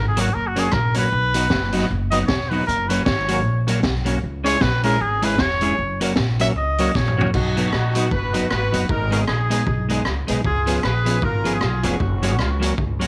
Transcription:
Already playing: G#1
0.08 G#4
0.16 F#3 A#3 C#4 F#4 A#4 C#5, closed hi-hat
0.21 F#4
0.34 F#1 A#4
0.47 F#4
0.56 F#3 A#3 C#4 F#4 G#4 A#4 C#5, closed hi-hat
0.72 A#1 A#4, muted clean electric guitar stroke, kick, cross-stick
0.94 F#3 A#3 C#4 F#4 A#4 B4 C#5, closed hi-hat
1.12 B1
1.34 F#3 B3 D#4 F#4 B4 D#5, closed hi-hat
1.50 F#1 B4 D#5, kick, snare
1.72 F#3 B3 D#4 F#4 B4 D#5, closed hi-hat
1.91 F#1
2.10 F#3 B3 D#4 F#4 B4 D#5, closed hi-hat
2.26 E1 C#5, kick, snare
2.49 F#3 B3 D#4 F#4 B4 D#5, open hi-hat
2.67 F#1 A#4, hi-hat pedal
2.88 F#3 A#3 C#4 F#4 A#4 B4 C#5, closed hi-hat
3.05 G#1 A#4 C#5, kick, snare
3.28 F#3 A#3 C#4 F#4 A#4 C#5, closed hi-hat
3.45 A#1
3.67 F#3 A#3 C#4 F#4 A#4 C#5, closed hi-hat
3.83 B1, muted clean electric guitar stroke, kick, snare
4.05 F#3 A#3 C#4 F#4 A#4 C#5, closed hi-hat
4.23 C#2
4.44 G#3 C#4 E4 G#4 C#5, closed hi-hat
4.61 A#1 G#4 B4 C#5, kick, snare
4.83 G#3 C#4 E4 G#4 A#4 C#5, closed hi-hat
5.01 G#1 G#4
5.22 G#3 C#4 E4 G#4 B4 C#5, closed hi-hat
5.38 E1 C#5, kick, snare
5.61 G#3 C#4 E4 G#4 C#5, closed hi-hat
5.79 F#1
6.00 F#3 A#3 C#4 F#4 A#4 C#5, closed hi-hat
6.16 A#1 A#4 C#5, kick, snare
6.39 F#3 A#3 C#4 F#4 A#4 C#5 E5, closed hi-hat
6.56 C#2 D#5
6.78 F#3 A#3 C#4 F#4 A#4 C#5, closed hi-hat
6.95 A#1 C#5, muted clean electric guitar stroke, kick, snare
7.08 mid tom
7.17 F#3 A#3 C#4 F#4 A#4 C#5, floor tom
7.34 B1 D#4 F#4, kick, crash
7.56 F#3 B3 D#4 F#4 B4 D#5, closed hi-hat
7.72 A#1 D#4 F#4 B4 D#5, muted clean electric guitar stroke, cross-stick
7.95 F#3 B3 D#4 F#4 B4 D#5, closed hi-hat
8.11 F#1 F#4 B4, kick
8.33 F#3 B3 D#4 F#4 B4 D#5, closed hi-hat
8.50 G#1 F#4 B4, cross-stick
8.72 F#1 F#3 B3 D#4 F#4 B4 D#5, closed hi-hat
8.89 G#1 D#4 A#4, kick
9.11 G#3 B3 D#4 F#4 G#4 A#4 B4 D#5, closed hi-hat
9.28 A#1 D#4 G#4 B4 D#5, cross-stick
9.50 G#3 B3 D#4 G#4 B4 D#5, closed hi-hat
9.67 B1, kick
9.89 G#3 B3 D#4 G#4 B4 D#5, closed hi-hat
10.05 C#2, muted clean electric guitar stroke, cross-stick
10.27 B1 G#3 B3 D#4 G#4 B4 D#5, closed hi-hat
10.44 C#2 F4 G#4, kick
10.66 F3 B3 C#4 F4 G#4 B4 C#5, closed hi-hat
10.83 A#1 G#4 B4 C#5, muted clean electric guitar stroke, cross-stick
11.05 F3 B3 C#4 F4 G#4 B4 C#5, closed hi-hat
11.22 G#1 F4 A#4, kick
11.44 F3 B3 C#4 F4 G#4 B4 C#5, closed hi-hat
11.53 F4 G#4
11.61 B1, muted clean electric guitar stroke, cross-stick
11.83 F1 F3 B3 C#4 F4 F#4 G#4 B4 C#5, closed hi-hat
12.00 F#1, kick
12.22 F#3 A#3 C#4 F#4 G#4 A#4 C#5, closed hi-hat
12.32 F#4
12.39 C#2 F4 A#4 C#5, cross-stick
12.51 F#4
12.60 F#3 A#3 C#4 F#4 A#4 C#5, closed hi-hat
12.78 C#2, kick
12.99 F#3 A#3 C#4 F#4 A#4 C#5, closed hi-hat

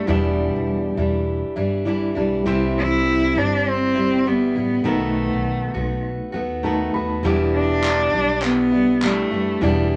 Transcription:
Already playing: A3
0.06 E1 E2 B2 E3 G3 D4 E4
0.10 G3 D5
0.56 E1
0.97 E1 E3 G3 D4 E4
1.56 G1 E3 G3 D4 E4
1.85 E3 G3 D4 E4 D5
2.15 B1 E3 G3 D4 E4
2.44 C2 C3 E3 G3 C4 E4 C6
2.79 E4
3.34 G1 G3 C4 D4 E4
3.68 C4
3.94 G3 C4 E4
4.25 E3 G3 B3 E4
4.55 A1 G3 E4
4.82 B1 B2 D#3 A3 B3 D#4 F#4 B4
4.87 A3
5.33 B1
5.74 B1 A3 B3 F#4
6.32 D#2 A3 B3 F#4 F#5
6.63 D#3 A3 B3 D#4 F#4 B4 A5
6.94 D#2 A3 B3 F#4 B5
7.23 E1 E2 B2 E3 G3 D4 E4 D5
7.54 D4
7.84 clap
8.13 B1 E3 G3 D4 E4
8.42 B3, clap
8.71 E3 G3 D4 E4
9.02 E3 G3 A3 D4 E4, clap
9.31 F#1 E3 G3 D4 E4
9.59 E1 E2 B2 E3 G3 D4 E4
9.64 D5

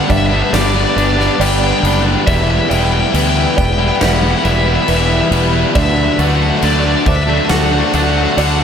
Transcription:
Already playing: G2 D3 G3 G4 B4 D5 B5
0.04 F#5
0.08 G1 D4 D5 E5, muted overdriven electric guitar stroke, muted distorted electric guitar stroke, kick, crash
0.18 E5
0.27 D4 E5
0.31 G3 B3
0.35 E5
0.42 E5
0.52 G1 G4 B4 D5 A5, snare, crash
0.61 D5
0.68 D5
0.73 G3 B3 D4 D5
0.83 D5
0.90 D5
0.95 G1 D3 G3 B3 D4 D5, crash
1.06 D5
1.12 D5
1.17 G3 B3 D4 D5, snare
1.28 D5
1.35 G2 D5
1.39 G1 D3 G3 B3 D4 D5 G5, crash
1.48 G5
1.56 G5
1.61 G3 B3 D4 G5
1.72 G5
1.79 F#1 D3 G5
1.84 G3 B3 D4 G5, crash
1.94 G5
2.04 G3 B3 D4
2.26 E1 E2 E3 G3 B3 E4 D5 E5 B5, kick, crash
2.35 E5
2.43 E5
2.51 E5
2.60 E5
2.69 E1 B2 E3 G3 B3 E4 E5 G5, crash
2.77 G5
2.85 G5
2.92 G5
3.00 G5
3.08 G5
3.13 D2 E3 G3 B3 E4 G5, crash
3.23 G5
3.30 G5
3.35 G3 B3 E4 G5
3.45 G5
3.56 E1 B3 D5 G5, muted distorted electric guitar stroke, muted overdriven electric guitar stroke, kick, crash
3.65 G5
3.73 G5
3.78 G3 B3 E4 G5
3.88 G5
3.96 G5
4.01 E1 G4 B4 F#5 A5, snare, crash
4.08 F#5
4.16 F#5
4.22 G3 B3 E4 F#5
4.31 F#5
4.39 F#5
4.43 E1 E3 G3 B3 E4 E5, crash
4.52 E5
4.59 E5
4.65 G3 B3 E4 E5
4.76 E5
4.83 E5
4.87 E1 E3 G3 B3 E4 B4 E5, crash
4.97 E5
5.05 E4 E5
5.10 G3 B3 E5
5.21 E5
5.31 E1 E3 G3 B3 E4, crash
5.53 G3 B3 E4
5.74 D2 D3 F#3 A3 D4 F#4 A4 D5 E5, kick, crash
5.83 E5
5.90 E5
5.97 E5
6.05 E5
6.13 E5
6.18 D2 D3 F#3 A3 D4 F#4 B4 F#5, crash
6.27 F#5
6.36 F#5
6.43 F#5
6.50 F#5
6.57 F#5
6.62 D2 D3 F#3 A3 D4 F#4 D5, crash
6.72 D5
6.80 D5
6.84 F#3 A3 D4 F#4 D5
6.96 D5
7.06 D2 D4 C5 E5, muted distorted electric guitar stroke, muted overdriven electric guitar stroke, kick, crash
7.16 E5
7.23 E5
7.28 F#3 A3 D4 F#4 E5
7.38 E5
7.45 E5
7.49 D2 F#4 A4 E5 F#5, snare, crash
7.58 F#5
7.66 F#5
7.71 F#3 A3 D4 F#5
7.80 F#5
7.87 F#5
7.93 D2 D3 A3 D4 F#4 F#5, crash
8.03 F#5
8.10 F#5
8.14 F#3 A3 D4 F#4 F#5
8.24 F#5
8.32 F#5
8.37 D2 D3 F#3 A3 D4 F#4 D5 F#5, crash
8.47 F#5
8.55 F#4 F#5
8.59 F#3 A3 D4

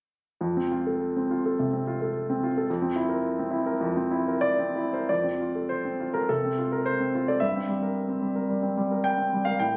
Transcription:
0.41 F2
0.57 C4
0.71 F4
0.87 A4
1.16 C4
1.30 F4
1.46 A4
1.59 C3
1.73 C4
1.87 F4
2.02 A4
2.30 C4
2.43 F4
2.58 A4
2.70 F2
2.82 C4
2.96 E4
3.09 A#4
3.39 C4
3.51 E4
3.66 A#4
3.81 F2
3.97 C4
4.11 E4
4.28 A#4
4.41 D5
4.59 C4
4.76 E4
4.93 A#4 C5
5.09 F2 D5
5.24 C4
5.40 F4
5.55 A4
5.69 C5
5.85 C4
6.00 F4
6.14 A4 A#4
6.29 C3 A4
6.45 C4
6.59 F4
6.72 A4 A#4
6.86 C5
7.00 C4
7.15 F4
7.28 A4 D5
7.40 G2 E5
7.56 C4
7.69 G3
7.82 A#4
8.09 C4
8.21 G3
8.36 A#4
8.49 G3
8.63 C4
8.77 G3
8.91 A#4
9.04 G5
9.18 C4
9.33 G3
9.45 A#4 F5
9.60 A2 G5

